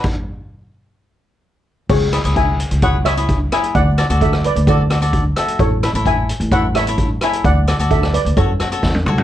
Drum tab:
CC |x---------------|x---------------|----------------|----------------|
HH |----------------|--xxx-xxx-xxx-xx|x-xxx-xxx-xxx-xx|x-xxx-xxx-xxx-xx|
SD |----------------|--r-------r---r-|--r--r----r---r-|--r-------r---r-|
T1 |----------------|----------------|----------------|----------------|
T2 |----------------|----------------|----------------|----------------|
FT |----------------|----------------|----------------|----------------|
BD |o---------------|o---o---o---o---|o---o---o---o---|o---o---o---o---|

CC |----------------|
HH |x-xxx-xxx-xx----|
SD |--r--r----r-o---|
T1 |-------------o--|
T2 |--------------o-|
FT |---------------o|
BD |o---o---o---o---|